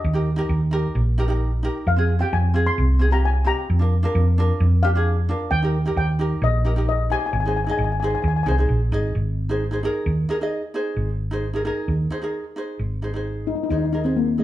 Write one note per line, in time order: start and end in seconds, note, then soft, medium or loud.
0.00 0.25 D#5 medium
0.04 0.40 D#2 loud
0.13 0.29 D#4 medium
0.13 0.29 G4 medium
0.13 0.30 A#4 medium
0.36 0.58 D#4 medium
0.36 0.59 G4 medium
0.36 0.59 A#4 loud
0.49 0.85 D#2 medium
0.71 1.00 D#4 medium
0.71 1.00 G4 medium
0.71 1.00 A#4 loud
0.95 1.67 A#1 loud
1.18 1.25 D#4 medium
1.18 1.26 G4 medium
1.18 1.26 A#4 loud
1.28 1.50 D#4 medium
1.28 1.50 G4 medium
1.28 1.51 A#4 medium
1.63 1.84 D#4 medium
1.63 1.85 G4 medium
1.63 1.85 A#4 loud
1.87 2.22 F2 medium
1.87 2.19 F5 medium
1.96 2.11 C4 medium
1.96 2.12 F4 medium
1.96 2.12 G#4 medium
2.19 2.41 C4 medium
2.19 2.41 F4 medium
2.19 2.42 G4 medium
2.19 2.32 G5 medium
2.33 2.68 F2 loud
2.33 2.68 G#5 medium
2.54 2.82 C4 medium
2.54 2.82 F4 medium
2.54 2.83 G#4 medium
2.67 3.09 C6 loud
2.78 3.49 C2 loud
2.99 3.07 C4 medium
2.99 3.07 F4 medium
2.99 3.08 G#4 medium
3.11 3.32 C4 medium
3.11 3.33 F4 medium
3.11 3.33 G4 medium
3.11 3.24 A#5 medium
3.25 3.48 G#5 medium
3.44 3.66 C4 medium
3.44 3.66 F4 medium
3.44 3.67 G4 medium
3.44 3.89 A#5 medium
3.70 4.05 F2 medium
3.79 3.94 D4 medium
3.79 3.94 F4 medium
3.79 3.95 A#4 medium
4.03 4.24 D4 medium
4.03 4.24 F4 medium
4.03 4.25 A#4 loud
4.15 4.50 F2 loud
4.38 4.65 D4 medium
4.38 4.66 F4 medium
4.38 4.66 A#4 loud
4.60 5.32 F2 loud
4.83 4.90 D4 medium
4.83 4.90 F4 medium
4.83 4.91 G4 loud
4.83 5.47 F5 medium
4.95 5.15 D4 medium
4.95 5.16 F4 medium
4.95 5.16 G#4 medium
5.29 5.49 D4 medium
5.29 5.49 F4 medium
5.29 5.50 A#4 medium
5.51 5.87 D#2 loud
5.51 5.96 G5 loud
5.62 5.76 D#4 medium
5.62 5.77 G4 medium
5.62 5.77 A#4 medium
5.86 6.06 D#4 medium
5.86 6.06 G4 medium
5.86 6.07 A#4 medium
5.96 6.32 D#2 medium
5.96 6.39 G5 medium
6.19 6.47 D#4 medium
6.19 6.47 G4 medium
6.19 6.48 A#4 medium
6.42 7.13 A#1 loud
6.42 6.88 D#5 loud
6.64 6.72 D#4 medium
6.64 6.72 G4 medium
6.64 6.73 A#4 medium
6.76 6.97 D#4 medium
6.76 6.97 G4 medium
6.76 6.98 A#4 medium
6.89 6.99 D#5 medium
7.10 7.31 D#4 medium
7.10 7.32 G4 medium
7.10 7.32 C5 medium
7.10 7.18 G#5 loud
7.19 7.25 G#5 medium
7.26 7.32 G#5 medium
7.33 7.69 G#1 loud
7.33 7.39 G#5 medium
7.40 7.47 G#5 medium
7.45 7.59 D#4 medium
7.45 7.59 G#4 medium
7.45 7.60 C5 medium
7.45 7.55 G#5 medium
7.57 7.63 G#5 medium
7.64 7.87 D#4 medium
7.64 7.88 G#4 medium
7.64 7.70 G#5 medium
7.69 7.89 D#5 medium
7.69 7.77 G#5 medium
7.78 8.14 G#1 medium
7.78 7.83 G#5 medium
7.84 7.91 G#5 medium
7.92 7.99 G#5 medium
8.00 8.29 D#4 medium
8.00 8.30 G#4 medium
8.00 8.06 G#5 medium
8.04 8.30 C5 medium
8.04 8.14 G#5 medium
8.15 8.21 G#5 medium
8.22 8.42 D#2 loud
8.22 8.27 G#5 medium
8.28 8.35 G#5 medium
8.36 8.42 G#5 medium
8.43 8.67 C2 medium
8.43 8.53 D#4 medium
8.43 8.54 G#4 medium
8.43 8.50 G#5 medium
8.48 8.55 C5 medium
8.48 8.59 G#5 medium
8.58 8.79 D#4 medium
8.58 8.79 G#4 medium
8.58 8.80 C5 medium
8.69 8.90 A#1 medium
8.92 9.13 G#1 medium
8.92 9.13 D#4 medium
8.92 9.13 G#4 medium
8.92 9.14 D#5 medium
9.15 9.86 G#1 medium
9.49 9.63 D#4 medium
9.49 9.63 G#4 medium
9.49 9.64 C5 medium
9.71 9.78 D#4 medium
9.71 9.79 G#4 medium
9.71 9.79 C5 medium
9.83 10.11 D#4 medium
9.83 10.11 G#4 medium
9.83 10.12 A#4 loud
10.06 10.24 D#2 loud
10.29 10.36 D#4 medium
10.29 10.36 G#4 medium
10.29 10.37 A#4 medium
10.41 10.61 D#4 medium
10.41 10.62 G#4 medium
10.41 10.62 D#5 medium
10.74 11.09 D#4 medium
10.74 11.09 G#4 medium
10.74 11.09 C5 medium
10.97 11.68 G#1 medium
11.31 11.45 D#4 medium
11.31 11.46 G#4 medium
11.31 11.46 C5 medium
11.53 11.61 D#4 medium
11.53 11.61 G#4 medium
11.53 11.62 A#4 medium
11.65 11.93 D#4 medium
11.65 11.93 G#4 medium
11.65 11.94 A#4 medium
11.88 12.06 D#2 medium
12.10 12.18 D#4 medium
12.10 12.18 G#4 medium
12.10 12.19 C5 medium
12.22 12.43 D#4 medium
12.22 12.43 G#4 medium
12.22 12.44 A#4 medium
12.56 12.79 D#4 medium
12.56 12.80 G#4 medium
12.56 12.80 C5 medium
12.79 13.51 G#1 medium
13.02 13.09 D#4 medium
13.02 13.09 G#4 medium
13.02 13.10 C5 medium
13.14 13.48 D#4 medium
13.14 13.49 G#4 medium
13.14 13.49 C5 medium
13.47 13.54 D#4 medium
13.56 13.62 D#4 medium
13.63 13.68 D#4 medium
13.70 14.42 D#2 medium
13.70 13.77 D#4 medium
13.70 13.85 D#4 medium
13.70 13.85 G#4 soft
13.70 13.85 C5 medium
13.78 13.84 D#4 medium
13.85 13.91 D#4 medium
13.93 14.00 D#4 medium
13.93 14.01 D#4 medium
13.93 14.01 G#4 medium
13.93 14.01 A#4 medium
14.04 14.16 C4 medium
14.04 14.25 D#4 medium
14.04 14.26 G#4 soft
14.04 14.26 C5 medium
14.16 14.38 A#3 medium
14.38 14.44 A3 medium
14.38 14.44 D#4 medium
14.38 14.44 G#4 medium
14.38 14.44 D#5 medium